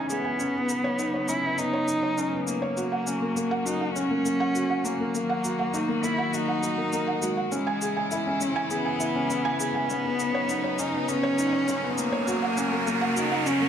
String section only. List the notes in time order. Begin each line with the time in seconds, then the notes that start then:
Already playing: C#3 E3 G#3 C#4
0.40 F#3 B3 D#4
2.78 A#3 F#4
5.14 D#3 F#4
7.53 C#3 E3 G#3 E4
9.89 F#3 B3 D#4
12.27 C#3 F#4 A#4